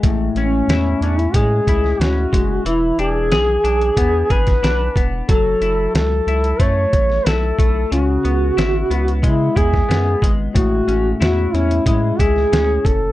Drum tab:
HH |x-x-x-xxx-x-x-x-|x-x-x-xxx-xxx-x-|x-x-x-xxx-x-x-x-|x-x-x-xxx-x-x-x-|
SD |----o------oo---|----o------oo---|----o------oo---|----o------oo---|
BD |o-------o-o---o-|--------o-oo--o-|o-------o-o---o-|--------o-oo--o-|

HH |x-x-x-xxx-x-x-x-|
SD |----o------oo---|
BD |o-------o-o---o-|